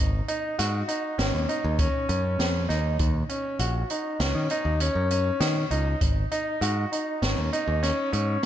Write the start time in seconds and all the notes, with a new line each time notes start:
0.00 G#1
0.28 D#4, closed hi-hat
0.59 G#2 F#4, snare, closed hi-hat
0.88 D#4, closed hi-hat
1.18 G#1 C#4, snare, closed hi-hat
1.34 D#2
1.49 D#4, closed hi-hat
1.64 D#2
1.79 C#4, kick, closed hi-hat
2.09 F#2 C#4, closed hi-hat
2.39 F2, snare, closed hi-hat
2.69 D#2 D#4, snare, closed hi-hat
2.99 D#2, kick, closed hi-hat
3.29 C#4, closed hi-hat
3.59 A#1 F#4, closed hi-hat
3.90 D#4, closed hi-hat
4.20 C#2 C#4, snare, closed hi-hat
4.35 D#3
4.50 D#4, closed hi-hat
4.65 D#2
4.80 C#4, closed hi-hat
4.95 F#2
5.11 C#4, closed hi-hat
5.40 D#3, snare, closed hi-hat
5.71 C#2 D#4, closed hi-hat
6.01 G#1, kick, closed hi-hat
6.32 D#4, closed hi-hat
6.61 G#2 F#4, closed hi-hat
6.92 D#4, closed hi-hat
7.22 G#1 C#4, snare, closed hi-hat
7.37 D#2
7.53 D#4, closed hi-hat
7.68 D#2
7.83 C#4, snare, closed hi-hat
8.12 G#2 C#4, closed hi-hat